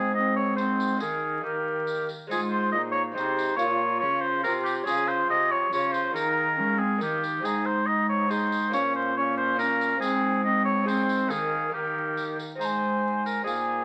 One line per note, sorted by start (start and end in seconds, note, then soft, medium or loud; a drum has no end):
0.00 0.97 G#2 medium
0.00 1.02 G#2 medium
0.00 0.53 G#3 soft
0.00 0.15 C4 medium
0.00 0.54 C4 medium
0.00 0.54 D#4 soft
0.00 0.14 G#4 medium
0.14 0.58 C4 medium
0.14 0.36 D#5 medium
0.36 0.56 C#5 medium
0.54 0.95 G#3 soft
0.54 0.97 C4 soft
0.54 0.97 D#4 soft
0.54 0.99 C5 medium
0.58 1.03 C4 medium
0.58 tambourine soft
0.80 tambourine medium
0.96 1.40 D#3 soft
0.96 1.40 G#3 soft
0.96 1.39 A#3 soft
0.96 1.40 D#4 soft
1.00 1.43 D#3 medium
1.00 1.43 G#4 medium
1.00 1.44 A#4 medium
1.00 tambourine medium
1.40 2.06 D#3 soft
1.40 2.09 D#3 soft
1.40 2.26 A#3 soft
1.40 2.27 D#4 soft
1.40 2.08 G4 medium
1.44 2.08 A#4 soft
1.87 tambourine soft
2.09 tambourine soft
2.27 2.74 G#2 medium
2.27 3.10 G#3 medium
2.27 3.12 C4 soft
2.27 3.13 D#4 medium
2.27 2.41 G#4 medium
2.31 2.70 G#2 medium
2.31 2.73 F4 medium
2.31 tambourine medium
2.50 2.71 C5 medium
2.72 3.12 A#2 medium
2.72 3.16 A#2 medium
2.72 2.79 F4 medium
2.72 2.82 D#5 medium
2.78 3.15 D#4 medium
2.92 3.02 C#5 medium
3.12 3.55 C3 medium
3.12 3.55 G#3 medium
3.12 3.56 C4 medium
3.12 3.57 D#4 medium
3.12 3.58 D#4 medium
3.12 3.56 C5 medium
3.16 3.58 C3 medium
3.16 tambourine soft
3.39 tambourine medium
3.56 3.98 A#2 medium
3.56 4.03 A#2 medium
3.56 4.82 F4 medium
3.56 4.42 F4 medium
3.56 4.83 A#4 medium
3.56 4.81 C#5 medium
3.56 3.99 C#5 medium
3.56 tambourine medium
3.99 4.45 C#3 medium
3.99 4.40 C#3 medium
3.99 4.22 C#5 loud
4.21 4.43 C5 medium
4.43 4.87 C3 medium
4.43 4.83 C3 medium
4.43 4.48 G4 medium
4.43 4.53 A#4 medium
4.43 tambourine medium
4.47 4.86 F4 medium
4.64 4.74 G4 medium
4.64 tambourine medium
4.83 5.26 C#3 medium
4.83 5.28 C#3 medium
4.83 6.10 F4 medium
4.83 5.70 F4 medium
4.83 6.11 G#4 medium
4.83 5.10 G#4 loud
4.83 6.09 C#5 medium
4.83 tambourine medium
5.08 5.30 C5 medium
5.29 5.71 C3 medium
5.29 5.68 C3 medium
5.29 5.53 D#5 loud
5.51 5.73 C#5 medium
5.71 6.11 C#3 medium
5.71 6.14 C#3 medium
5.71 6.15 F4 medium
5.71 5.94 C#5 loud
5.71 tambourine medium
5.92 6.14 C5 medium
5.92 tambourine medium
6.11 6.54 D#3 medium
6.11 6.60 D#3 medium
6.11 6.96 A#3 medium
6.11 6.97 D#4 medium
6.11 6.58 D#4 medium
6.11 6.98 G#4 medium
6.11 6.80 A#4 medium
6.16 tambourine medium
6.57 6.97 G#3 medium
6.57 7.03 G#3 medium
6.57 6.80 C#4 medium
6.78 7.02 C4 medium
6.78 7.01 G#4 medium
6.97 7.40 D#3 medium
6.97 7.40 A#3 soft
6.97 7.40 D#4 soft
6.97 7.42 A#4 soft
6.97 7.23 A#4 medium
6.97 tambourine soft
7.01 7.44 D#3 medium
7.01 7.45 G4 medium
7.24 tambourine medium
7.40 8.69 G#2 medium
7.40 8.26 C4 soft
7.40 8.26 D#4 soft
7.40 7.84 D#4 medium
7.40 8.27 G#4 soft
7.40 7.67 G#4 medium
7.45 8.74 G#2 medium
7.45 tambourine medium
7.66 7.88 C5 medium
7.86 8.29 D#4 medium
7.86 8.08 D#5 loud
8.09 8.32 C#5 medium
8.27 8.70 C4 soft
8.27 8.71 D#4 soft
8.27 8.75 D#4 medium
8.27 8.72 G#4 soft
8.27 8.73 C5 medium
8.27 tambourine soft
8.52 tambourine medium
8.70 10.00 A#2 medium
8.70 9.97 A#2 medium
8.70 9.53 A#3 medium
8.70 9.55 C#4 soft
8.70 9.15 C#4 medium
8.70 9.55 F4 medium
8.70 tambourine medium
8.74 8.94 C#5 loud
8.96 9.16 C5 medium
9.16 9.58 C#4 medium
9.16 9.37 C#5 medium
9.37 9.58 C5 loud
9.54 9.98 A#3 medium
9.54 9.97 C#4 medium
9.54 9.98 F4 medium
9.59 10.00 C#4 medium
9.59 9.63 D#4 medium
9.59 10.00 A#4 loud
9.59 tambourine soft
9.81 tambourine medium
9.97 11.25 G#2 medium
9.97 11.26 G#2 medium
9.97 10.81 C4 medium
9.97 10.83 D#4 medium
9.97 10.84 G#4 medium
9.97 10.43 G#4 medium
10.02 10.41 C4 medium
10.02 tambourine medium
10.44 10.86 C4 medium
10.44 10.64 D#5 loud
10.65 10.86 C#5 medium
10.83 11.25 C4 medium
10.83 11.26 D#4 medium
10.83 11.27 G#4 medium
10.87 11.33 C4 medium
10.87 11.31 C5 medium
10.87 tambourine medium
11.09 tambourine medium
11.26 11.72 D#3 medium
11.26 11.67 A#3 soft
11.26 11.68 D#4 soft
11.26 11.70 G#4 soft
11.26 11.73 G#4 medium
11.30 11.69 D#3 medium
11.30 11.73 A#4 medium
11.30 tambourine medium
11.68 12.35 D#3 medium
11.68 12.55 A#3 soft
11.68 12.55 D#4 soft
11.68 12.56 A#4 soft
11.73 12.38 D#3 medium
11.73 12.37 G4 medium
11.73 12.37 A#4 medium
12.17 tambourine soft
12.39 tambourine medium
12.55 13.42 G#2 soft
12.55 13.41 C4 soft
12.55 13.41 D#4 soft
12.55 13.42 G#4 soft
12.60 13.42 G#2 soft
12.60 13.21 C5 medium
12.60 12.66 A#5 soft
12.60 tambourine medium
12.65 13.42 G#5 medium
13.26 13.44 A#4 medium
13.26 tambourine soft
13.42 13.85 A#2 soft
13.42 13.84 C4 soft
13.42 13.85 D#4 soft
13.42 13.85 G#4 medium
13.42 13.85 G#4 soft
13.47 13.85 G#5 medium
13.47 tambourine soft